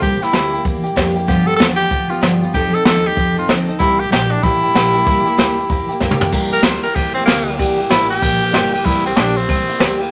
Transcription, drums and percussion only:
0.02 kick loud
0.02 closed hi-hat medium
0.23 snare soft
0.23 closed hi-hat medium
0.33 snare loud
0.33 closed hi-hat medium
0.53 closed hi-hat medium
0.65 kick loud
0.65 closed hi-hat medium
0.86 closed hi-hat medium
0.97 kick medium
0.97 snare loud
0.97 closed hi-hat medium
1.18 closed hi-hat medium
1.28 kick loud
1.28 snare soft
1.28 closed hi-hat medium
1.49 closed hi-hat medium
1.60 snare loud
1.60 closed hi-hat medium
1.81 closed hi-hat medium
1.91 kick loud
1.91 closed hi-hat medium
2.11 closed hi-hat medium
2.23 snare loud
2.23 closed hi-hat medium
2.43 closed hi-hat medium
2.54 kick loud
2.54 closed hi-hat medium
2.75 closed hi-hat medium
2.85 snare loud
2.85 closed hi-hat medium
3.05 closed hi-hat medium
3.17 kick loud
3.17 closed hi-hat medium
3.37 closed hi-hat medium
3.49 snare loud
3.49 closed hi-hat medium
3.69 closed hi-hat medium
3.80 kick loud
3.80 snare soft
3.80 closed hi-hat medium
4.01 closed hi-hat medium
4.13 snare loud
4.13 closed hi-hat medium
4.32 closed hi-hat medium
4.43 kick loud
4.43 snare soft
4.43 closed hi-hat medium
4.64 closed hi-hat medium
4.75 snare loud
4.75 closed hi-hat medium
4.96 closed hi-hat medium
5.07 kick loud
5.07 closed hi-hat medium
5.27 closed hi-hat medium
5.38 snare loud
5.38 closed hi-hat medium
5.59 closed hi-hat medium
5.70 kick loud
5.70 closed hi-hat medium
5.90 closed hi-hat medium
6.00 kick medium
6.00 snare medium
6.11 mid tom medium
6.21 floor tom loud
6.32 kick loud
6.32 crash loud
6.52 ride medium
6.63 snare loud
6.63 ride medium
6.84 ride medium
6.95 kick loud
6.95 snare soft
6.95 ride medium
7.16 ride medium
7.27 snare loud
7.27 ride medium
7.48 ride medium
7.59 kick loud
7.59 ride medium
7.80 ride medium
7.90 snare loud
7.90 ride medium
8.11 ride medium
8.22 kick loud
8.22 snare soft
8.22 ride medium
8.42 ride medium
8.54 snare loud
8.54 ride medium
8.75 ride medium
8.86 kick loud
8.86 ride medium
9.06 ride medium
9.17 snare loud
9.17 ride medium
9.37 ride medium
9.49 kick loud
9.49 ride medium
9.69 ride medium
9.80 snare loud
9.80 ride medium
10.00 ride medium

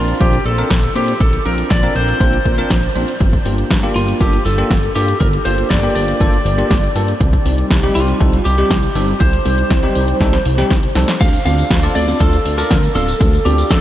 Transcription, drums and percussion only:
0.08 closed hi-hat soft
0.21 kick loud
0.21 closed hi-hat medium
0.33 closed hi-hat soft
0.46 closed hi-hat soft
0.58 closed hi-hat soft
0.70 kick loud
0.70 snare loud
0.70 closed hi-hat medium
0.83 closed hi-hat soft
0.96 closed hi-hat medium
1.08 closed hi-hat soft
1.20 kick loud
1.20 closed hi-hat medium
1.33 closed hi-hat soft
1.45 closed hi-hat medium
1.58 closed hi-hat soft
1.70 kick loud
1.70 snare loud
1.70 closed hi-hat medium
1.83 closed hi-hat soft
1.95 closed hi-hat medium
2.08 closed hi-hat soft
2.20 kick loud
2.20 closed hi-hat medium
2.33 closed hi-hat soft
2.45 kick medium
2.45 closed hi-hat soft
2.58 closed hi-hat soft
2.70 kick loud
2.70 snare loud
2.70 closed hi-hat medium
2.83 closed hi-hat soft
2.96 closed hi-hat medium
3.08 closed hi-hat soft
3.21 kick loud
3.21 closed hi-hat medium
3.33 kick medium
3.33 closed hi-hat soft
3.46 open hi-hat loud
3.58 closed hi-hat soft
3.71 kick loud
3.71 snare loud
3.71 closed hi-hat medium
3.83 closed hi-hat soft
3.96 open hi-hat loud
4.08 closed hi-hat soft
4.21 kick loud
4.21 closed hi-hat medium
4.33 closed hi-hat soft
4.46 open hi-hat loud
4.58 closed hi-hat soft
4.71 kick loud
4.71 snare loud
4.71 closed hi-hat medium
4.83 closed hi-hat soft
4.96 open hi-hat loud
5.08 closed hi-hat soft
5.21 kick loud
5.21 closed hi-hat medium
5.33 closed hi-hat soft
5.46 open hi-hat loud
5.58 closed hi-hat soft
5.71 kick loud
5.71 snare loud
5.71 closed hi-hat medium
5.83 closed hi-hat soft
5.96 open hi-hat loud
6.08 closed hi-hat soft
6.21 kick loud
6.21 closed hi-hat medium
6.33 closed hi-hat soft
6.46 open hi-hat loud
6.58 closed hi-hat soft
6.71 kick loud
6.71 snare loud
6.71 closed hi-hat medium
6.83 closed hi-hat soft
6.96 open hi-hat loud
7.08 closed hi-hat soft
7.21 kick loud
7.21 closed hi-hat medium
7.33 kick medium
7.33 closed hi-hat soft
7.46 open hi-hat loud
7.58 closed hi-hat soft
7.71 kick loud
7.71 snare loud
7.71 closed hi-hat medium
7.83 closed hi-hat soft
7.96 open hi-hat loud
8.08 closed hi-hat soft
8.21 kick loud
8.21 closed hi-hat medium
8.33 closed hi-hat soft
8.46 open hi-hat loud
8.58 closed hi-hat soft
8.71 kick loud
8.71 snare loud
8.71 closed hi-hat medium
8.83 closed hi-hat soft
8.95 open hi-hat loud
9.08 closed hi-hat soft
9.21 kick loud
9.21 closed hi-hat loud
9.33 closed hi-hat soft
9.46 open hi-hat loud
9.58 closed hi-hat soft
9.70 kick loud
9.70 snare loud
9.70 closed hi-hat medium
9.83 closed hi-hat soft
9.95 open hi-hat loud
10.08 closed hi-hat soft
10.21 kick loud
10.21 snare medium
10.21 closed hi-hat loud
10.33 snare medium
10.33 closed hi-hat soft
10.45 open hi-hat loud
10.58 snare medium
10.58 closed hi-hat soft
10.70 kick loud
10.70 snare medium
10.70 closed hi-hat medium
10.83 closed hi-hat soft
10.95 snare loud
10.95 open hi-hat loud
11.08 snare medium
11.08 closed hi-hat soft
11.21 kick loud
11.21 closed hi-hat loud
11.21 crash loud
11.21 tambourine medium
11.33 closed hi-hat soft
11.33 tambourine soft
11.46 open hi-hat loud
11.46 high conga medium
11.58 closed hi-hat soft
11.58 tambourine medium
11.71 kick loud
11.71 snare loud
11.71 closed hi-hat loud
11.71 tambourine soft
11.83 closed hi-hat soft
11.83 tambourine soft
11.96 open hi-hat loud
11.96 high conga medium
12.08 closed hi-hat soft
12.08 tambourine medium
12.08 high conga medium
12.21 kick loud
12.21 closed hi-hat medium
12.21 tambourine medium
12.33 closed hi-hat soft
12.33 tambourine soft
12.46 open hi-hat loud
12.58 closed hi-hat soft
12.58 tambourine medium
12.71 kick loud
12.71 snare loud
12.71 closed hi-hat loud
12.71 tambourine soft
12.83 closed hi-hat soft
12.83 tambourine soft
12.96 open hi-hat loud
12.96 high conga medium
13.08 closed hi-hat soft
13.08 tambourine medium
13.21 kick loud
13.21 closed hi-hat loud
13.21 tambourine soft
13.33 closed hi-hat soft
13.33 tambourine soft
13.46 open hi-hat loud
13.46 high conga medium
13.58 closed hi-hat soft
13.58 tambourine medium
13.71 kick loud
13.71 snare loud
13.71 closed hi-hat medium
13.71 tambourine soft

